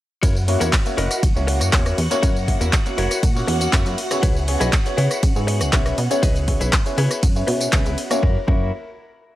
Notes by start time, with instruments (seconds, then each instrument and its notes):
0.23 analog synth bass F#2, clean electric guitar E4 F#4 A#4 C#5, string machine F#4 F#5, kick, closed hi-hat, ride, tambourine
0.36 tambourine
0.47 grand piano A#3 C#4 E4 F#4 C#5, muted clean electric guitar stroke, open hi-hat
0.60 analog synth bass E2, clean electric guitar E4 F#4 A#4 C#5, closed hi-hat, tambourine
0.73 kick, clap, closed hi-hat, ride, tambourine
0.85 grand piano A#3 C#4 E4 F#4 C#5, muted clean electric guitar stroke, closed hi-hat, tambourine
0.97 analog synth bass F#1, clean electric guitar E4 F#4 A#4 D#5, open hi-hat
1.11 cross-stick, closed hi-hat, tambourine
1.23 analog synth bass F#1, kick, closed hi-hat, ride, tambourine
1.36 analog synth bass C#2, grand piano A#3 C#4 E4 F#4 C#5, tambourine
1.47 muted clean electric guitar stroke, open hi-hat
1.60 analog synth bass F#2, muted clean electric guitar stroke, cross-stick, closed hi-hat, tambourine
1.73 analog synth bass E2, grand piano A#3 C#4 F#4, clean electric guitar E4 F#4 A#4 C#5, kick, clap, closed hi-hat, ride, tambourine
1.86 cross-stick, closed hi-hat, tambourine
1.98 analog synth bass E2, open hi-hat
2.10 grand piano A#3 C#4 E4 F#4 C#5, closed hi-hat, tambourine
2.23 analog synth bass F#2, clean electric guitar E4 F#4 A#4 C#5, kick, closed hi-hat, ride, tambourine
2.36 tambourine
2.48 grand piano A#3 C#4 E4 F#4 C#5, muted clean electric guitar stroke, kick, open hi-hat
2.61 analog synth bass E2, clean electric guitar E4 F#4 A#4 E5, closed hi-hat, tambourine
2.73 kick, clap, closed hi-hat, ride, tambourine
2.86 grand piano A#3 C#4 E4 F#4 C#5, muted clean electric guitar stroke, closed hi-hat, tambourine
2.98 analog synth bass F#1, clean electric guitar E4 F#4 A#4 C#5, open hi-hat
3.11 cross-stick, closed hi-hat, tambourine
3.23 analog synth bass A#2, kick, closed hi-hat, ride, tambourine
3.36 grand piano A#3 C#4 E4 F#4 C#5, tambourine
3.48 analog synth bass E2, muted clean electric guitar stroke, open hi-hat
3.60 muted clean electric guitar stroke, closed hi-hat, tambourine
3.72 analog synth bass F#2, grand piano A#3 C#4 F#4 C#5, clean electric guitar E4 F#4 A#4 E5, kick, clap, closed hi-hat, ride, tambourine
3.86 analog synth bass F#2, closed hi-hat, tambourine
3.98 open hi-hat
4.11 grand piano B3 C#4 E4 G#4 C#5, cross-stick, closed hi-hat, tambourine
4.23 analog synth bass C#2, clean electric guitar E4 G#4 B4 C#5, kick, closed hi-hat, ride, tambourine
4.36 tambourine
4.48 grand piano B3 C#4 E4 G#4 C#5, muted clean electric guitar stroke, open hi-hat
4.60 analog synth bass B1, clean electric guitar E4 G#4 B4 D#5, closed hi-hat, tambourine
4.73 kick, clap, closed hi-hat, ride, tambourine
4.85 grand piano B3 C#4 E4 G#4 C#5, muted clean electric guitar stroke, closed hi-hat, tambourine
4.97 analog synth bass C#3, clean electric guitar E4 G#4 B4 C#5, open hi-hat
5.11 cross-stick, closed hi-hat, tambourine
5.23 analog synth bass C#3, kick, closed hi-hat, ride, tambourine
5.35 analog synth bass G#2, grand piano B3 C#4 E4 G#4 C#5, tambourine
5.47 muted clean electric guitar stroke, open hi-hat
5.60 analog synth bass C#2, muted clean electric guitar stroke, cross-stick, closed hi-hat, tambourine
5.73 analog synth bass B1, grand piano B3 C#4 E4 G#4 C#5, clean electric guitar E4 G#4 B4 C#5, kick, clap, closed hi-hat, ride, tambourine
5.86 cross-stick, closed hi-hat, tambourine
5.98 analog synth bass B2, open hi-hat
6.10 grand piano B3 C#4 E4 G#4 C#5, closed hi-hat, tambourine
6.23 analog synth bass C#2, clean electric guitar E4 G#4 B4 D#5, kick, closed hi-hat, ride, tambourine
6.36 closed hi-hat, tambourine
6.47 grand piano B3 C#4 E4 G#4 C#5, muted clean electric guitar stroke, kick, open hi-hat
6.61 analog synth bass B1, clean electric guitar E4 G#4 B4 E5, closed hi-hat, tambourine
6.73 kick, clap, closed hi-hat, ride, tambourine
6.85 grand piano B3 C#4 E4 G#4 C#5, muted clean electric guitar stroke, closed hi-hat, tambourine
6.98 analog synth bass C#3, clean electric guitar E4 G#4 B4 C#5, open hi-hat
7.11 cross-stick, closed hi-hat, tambourine
7.23 analog synth bass F#2, kick, closed hi-hat, ride, tambourine
7.35 grand piano B3 C#4 E4 G#4 C#5, tambourine
7.47 analog synth bass B2, muted clean electric guitar stroke, open hi-hat
7.60 muted clean electric guitar stroke, closed hi-hat, tambourine
7.73 analog synth bass C#2, grand piano B3 C#4 C#5, clean electric guitar E4 G#4 B4 C#5, kick, clap, closed hi-hat, ride, tambourine
7.86 analog synth bass C#2, closed hi-hat, tambourine
7.98 open hi-hat
8.10 grand piano A#3 C#4 E4 F#4 C#5, cross-stick, closed hi-hat, tambourine
8.22 analog synth bass F#2, grand piano A#3 E4, clean electric guitar E4 F#4 A#4, kick
8.47 analog synth bass F#2, grand piano A#3 C#4 E4 F#4 C#5, clean electric guitar E4 F#4 A#4, kick